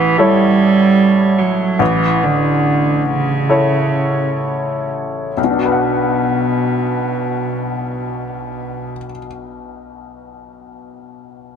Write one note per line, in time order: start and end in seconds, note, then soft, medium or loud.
0.00 1.76 A1 medium
0.00 0.19 E3 medium
0.17 1.40 G3 medium
0.17 1.76 E4 soft
0.17 1.76 A4 soft
0.17 1.77 C#5 soft
1.39 1.81 F#3 medium
1.79 5.33 A1 medium
1.79 2.25 E3 medium
2.23 3.07 D3 medium
3.05 4.89 C#3 medium
3.49 5.33 E4 soft
3.49 5.33 A4 soft
3.49 5.34 C#5 soft
5.36 8.90 B1 soft
5.36 8.89 B2 soft
5.44 8.97 B2 soft
5.51 9.04 D4 soft
5.58 9.11 F#4 soft
5.65 9.18 B4 soft
5.72 9.25 F#5 soft